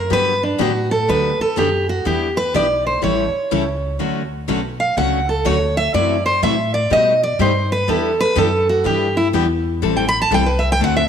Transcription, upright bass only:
0.11 0.58 G2 medium
0.59 1.07 A2 medium
1.08 1.37 D2 medium
1.39 muted upright bass stroke soft
1.57 2.04 F#2 medium
2.05 2.53 E2 medium
2.54 3.01 B1 medium
3.03 3.31 A1 loud
3.33 muted upright bass stroke soft
3.51 3.98 C#2 loud
4.00 4.47 D2 medium
4.48 4.95 B1 medium
4.97 5.44 C#2 medium
5.45 5.92 D2 medium
5.94 6.41 F#2 medium
6.42 6.90 A2 medium
6.91 7.38 B2 medium
7.39 7.86 G2 medium
7.88 8.35 E2 medium
8.36 8.84 F#2 loud
8.85 9.32 G2 loud
9.34 9.81 E2 loud
9.82 10.29 A1 medium
10.31 10.78 C2 medium
10.80 11.09 D2 loud

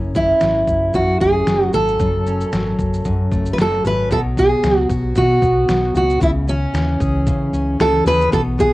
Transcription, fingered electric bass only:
0.00 0.32 F#1 medium
0.41 0.63 G#1 medium
0.67 0.89 F#1 medium
0.94 1.16 F#2 loud
1.21 1.42 F#1 medium
1.47 1.69 F#1 medium
1.73 1.95 G#1 medium
2.00 2.43 F#1 medium
2.52 2.74 G#1 medium
2.79 3.00 F#1 medium
3.05 3.27 F#2 loud
3.31 3.53 F#1 medium
3.58 3.79 F#1 medium
3.84 4.06 G#1 medium
4.11 4.54 B1 medium
4.64 4.85 C#2 medium
4.90 5.11 B1 medium
5.16 5.37 B2 loud
5.42 5.64 B1 medium
5.68 5.90 B1 medium
5.94 6.16 C#2 medium
6.21 6.64 C#2 loud
6.73 6.95 D#2 medium
7.01 7.28 C#2 medium
7.27 7.48 C#3 loud
7.53 7.74 C#2 medium
7.79 8.01 C#2 medium
8.05 8.27 D#2 loud
8.33 8.73 B1 loud

